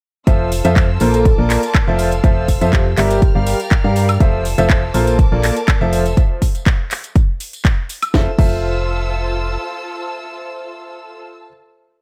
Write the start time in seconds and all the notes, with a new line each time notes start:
0.27 F1 F3 F4 A4 C5 E5 F5 E6, kick, closed hi-hat, tambourine
0.39 C5
0.52 open hi-hat, tambourine
0.61 A5 E6, tambourine
0.65 F2 F3 F4 A4 C5 E5, closed hi-hat
0.76 kick, clap, closed hi-hat, tambourine
1.00 A#1 A#3 F4 A4 A#4 C5 A5 D6, open hi-hat, tambourine
1.14 A4, closed hi-hat, tambourine
1.25 kick, closed hi-hat, tambourine
1.38 A#1 A#3 F4 A4 A#4 D5
1.45 D5
1.50 clap, open hi-hat, tambourine
1.63 closed hi-hat, tambourine
1.75 kick, clap, closed hi-hat, high woodblock
1.88 F1 F3 F4 A4 C5 E5
1.99 A4 F5 E6, open hi-hat, tambourine
2.11 closed hi-hat, tambourine
2.24 F1 F3 F4 A4 C5 E5, kick, closed hi-hat, tambourine
2.44 E6
2.48 kick, open hi-hat, tambourine
2.61 F2 F3 F4 A4 C5 E5, closed hi-hat, tambourine
2.73 G4, kick, clap, closed hi-hat, tambourine
2.97 G1 G3 G4 A#4 D5 E5 G5 F6, clap, open hi-hat, tambourine
3.11 G4, closed hi-hat, tambourine
3.22 kick, closed hi-hat, tambourine
3.34 G1 G3 G4 A#4 D5 F5
3.39 F5
3.46 open hi-hat, tambourine
3.53 A#5
3.60 closed hi-hat, tambourine
3.70 kick, clap, closed hi-hat, tambourine
3.84 G2 G3 G4 A#4 D5 F5
3.96 open hi-hat, tambourine
4.09 closed hi-hat, tambourine, high woodblock
4.20 F1 F3 F4 A4 C5 E5 F5 E6, kick, closed hi-hat, tambourine
4.45 open hi-hat, tambourine
4.54 F1 F3 F4 A4 C5 E5 A5 E6, closed hi-hat
4.58 tambourine
4.69 kick, clap, closed hi-hat, tambourine
4.94 A#1 A#3 F4 A4 A#4 C5 A5 D6, open hi-hat, tambourine
5.07 closed hi-hat, tambourine
5.19 kick, closed hi-hat, tambourine
5.32 A#1 A#3 F4 A4 A#4 D5
5.39 A#4 D5
5.43 clap, open hi-hat, tambourine
5.57 closed hi-hat, tambourine
5.68 kick, clap, closed hi-hat, tambourine, high woodblock
5.81 F1 F3 F4 A4 C5 E5
5.93 A4 F5 E6, open hi-hat, tambourine
6.04 C5 E5, closed hi-hat, tambourine
6.17 kick, closed hi-hat, tambourine
6.42 kick, open hi-hat, tambourine
6.55 closed hi-hat, tambourine
6.66 kick, clap, closed hi-hat, tambourine
6.91 clap, open hi-hat, tambourine
7.04 closed hi-hat, tambourine
7.15 kick, closed hi-hat, tambourine
7.40 open hi-hat, tambourine
7.53 closed hi-hat, tambourine
7.65 kick, clap, closed hi-hat
7.89 open hi-hat, tambourine
8.02 closed hi-hat, tambourine, high woodblock
8.14 F1 F4 A4 C5 E5 E6, kick, snare
8.22 C5
8.29 E6
8.36 F1 F4 A4 C5 E5 A5, kick, crash